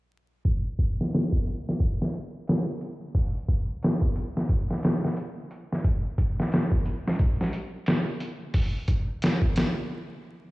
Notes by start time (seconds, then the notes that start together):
0.45 kick, closed hi-hat
0.79 kick, closed hi-hat
1.01 snare
1.13 snare, closed hi-hat
1.32 kick
1.47 closed hi-hat
1.69 snare
1.80 kick, closed hi-hat
2.02 snare
2.14 closed hi-hat
2.48 snare, closed hi-hat
2.81 closed hi-hat
3.15 kick, open hi-hat
3.48 kick, closed hi-hat
3.83 snare, closed hi-hat
4.02 kick
4.16 closed hi-hat
4.37 snare
4.49 kick, closed hi-hat
4.71 snare
4.83 snare, closed hi-hat
5.05 snare
5.17 closed hi-hat
5.51 closed hi-hat
5.72 snare
5.84 kick, closed hi-hat
6.18 kick, closed hi-hat
6.40 snare
6.52 snare, closed hi-hat
6.72 kick
6.86 closed hi-hat
7.07 snare
7.19 kick, closed hi-hat
7.41 snare
7.53 closed hi-hat
7.86 snare, closed hi-hat
8.20 closed hi-hat
8.54 kick, open hi-hat
8.88 kick, closed hi-hat
9.22 snare, closed hi-hat
9.42 kick
9.56 snare, closed hi-hat